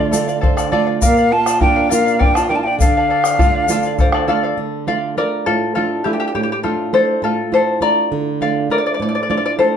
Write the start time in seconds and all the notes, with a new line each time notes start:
Already playing: D3 A3 D4 F4 D5 F5
0.00 D5
0.11 A3 D4 F4 A4 D5 F5, shaker
0.28 D5 F5, shaker
0.41 A4 C5 D5 F5, bombo rim, bombo low
0.56 A4 D5 F5, bombo rim, shaker
0.72 A3 D4 F4 A4 D5 F5
0.86 D5 F5, bombo rim
1.02 A#2 A#3 A#4 D5 F5, bombo low, shaker
1.16 D5 F5, shaker
1.30 F4 A#4 D5 F5 A5
1.46 D5 F5, bombo rim, shaker
1.60 A#3 D4 F4 A#4 D5 F5 G5, bombo low
1.76 A#4 D5 F5
1.89 A#3 D4 F4 A#4 D5 F5, shaker
2.05 D5 F5, shaker
2.19 D4 A#4 D5 F5 G5, bombo rim, bombo low
2.34 F4 D5 F5 A5, bombo rim, shaker
2.48 A#3 D4 F4 A#4 D5 F5 G5
2.56 F4 A5
2.63 D4 D5 F5 G5
2.79 D3 A4 D5 F5, bombo low, shaker
2.83 D4
2.97 A4 D5 F5
3.10 A4 D5 F5
3.24 D5 F5, bombo rim, shaker
3.38 A3 D4 F4 A4 D5 F5, bombo low, shaker
3.55 D5 F5
3.68 A3 D4 F4 A4 D5 F5, shaker
3.83 F5, shaker
3.87 D5
3.98 A4 C5 D5 F5, bombo rim, bombo low, shaker
4.12 A4 D5 F5, bombo rim
4.27 A3 D4 F4 A4 D5 F5, bombo rim
4.43 D5 F5
4.57 D3
4.87 A3 D4 F4 D5 F5
5.17 A3 D4 F4 A#4 D5
5.46 A2 F4 A4
5.75 A3 D4 F4 A4
6.04 A3 D4 E4 F4 G4
6.13 G4
6.20 G4
6.28 G4
6.35 A2 G4
6.43 G4
6.52 G4
6.63 A3 D4 F4 A4
6.93 A3 D4 F4 A4 C5
7.22 A2 F4 A4
7.52 A3 D4 F4 A4 C5
7.81 A3 D4 F4 D5 A#5
8.12 D3
8.41 A3 D4 F4 D5 F5
8.70 A3 D4 F4 A#4 D5
8.78 D5
8.86 D5
8.94 D5
9.00 A2 D5
9.09 D5
9.15 D5
9.23 D5
9.29 A3 D4 F4 D5
9.37 D5
9.46 D5
9.59 A3 D4 F4 A4 C5